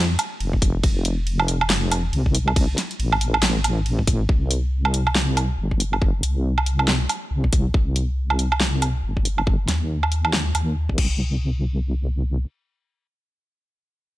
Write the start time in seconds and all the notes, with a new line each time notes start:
Already playing: F2
0.19 closed hi-hat, low woodblock
0.40 F1, ride
0.53 kick
0.62 kick, closed hi-hat
0.83 F1, kick, ride
1.05 closed hi-hat
1.27 ride
1.40 low woodblock
1.48 closed hi-hat
1.61 low woodblock
1.70 snare, clap, ride
1.92 closed hi-hat, low woodblock
2.13 C2, ride
2.26 kick
2.35 closed hi-hat
2.48 low woodblock
2.56 kick, ride
2.78 snare, closed hi-hat
2.91 closed hi-hat
3.00 A1, ride
3.12 low woodblock
3.21 closed hi-hat
3.34 low woodblock
3.43 snare, clap, ride
3.64 closed hi-hat, low woodblock
3.86 ride
3.99 kick
4.07 kick, closed hi-hat
4.29 C2, kick
4.51 closed hi-hat
4.85 low woodblock
4.94 closed hi-hat
5.07 low woodblock
5.15 snare
5.37 closed hi-hat, low woodblock
5.59 G1
5.71 kick
5.80 closed hi-hat
5.93 low woodblock
6.02 kick
6.23 C2, closed hi-hat
6.58 low woodblock
6.66 closed hi-hat
6.79 low woodblock
6.88 snare
7.09 closed hi-hat, low woodblock
7.31 C2
7.44 kick
7.53 kick, closed hi-hat
7.74 C2, kick
7.96 closed hi-hat
8.30 low woodblock
8.39 closed hi-hat
8.52 low woodblock
8.60 snare
8.82 closed hi-hat, low woodblock
9.04 G1
9.17 kick
9.25 closed hi-hat
9.38 low woodblock
9.47 kick
9.68 D#2, snare, closed hi-hat
10.03 low woodblock
10.12 closed hi-hat
10.25 low woodblock
10.33 snare
10.55 D#2, closed hi-hat, low woodblock
10.89 kick
10.98 C2, kick, crash